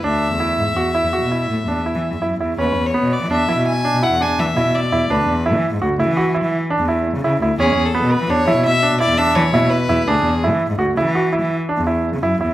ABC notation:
X:1
M:7/4
L:1/16
Q:1/4=168
K:Emix
V:1 name="Violin"
e24 z4 | B3 c3 d2 e4 g4 f2 g2 e4 d4 | B4 z24 | G3 A3 B2 c4 e4 d2 e2 c4 B4 |
G4 z24 |]
V:2 name="Grand piano"
D4 E4 F2 E2 F2 E4 D2 E4 E2 E2 | C4 B,4 D2 E4 D2 E2 D4 E4 E2 | D4 E4 F2 E2 F2 E4 D2 E4 E2 E2 | C4 B,4 D2 E4 D2 E2 D4 E4 E2 |
D4 E4 F2 E2 F2 E4 D2 E4 E2 E2 |]
V:3 name="Cello" clef=bass
D,,2 z E,,2 z G,, z E,,2 z E,, z B,,3 A,, z E,,2 z E, z E,, F,,2 E,,2 | E,, z E,,3 B,,2 E, E,, z E, B,,2 z2 B,,2 E,,2 z E, z B,, B,,2 z E,, z | D,,2 E,,3 E,2 G,, D,, z C, E,4 E,2 z2 E,,4 C, C,2 D,,2 | E,, z E,,3 B,,2 E, E,, z E, B,,2 z2 B,,2 E,,2 z E, z B,, B,,2 z E,, z |
D,,2 E,,3 E,2 G,, D,, z C, E,4 E,2 z2 E,,4 C, F,,2 E,,2 |]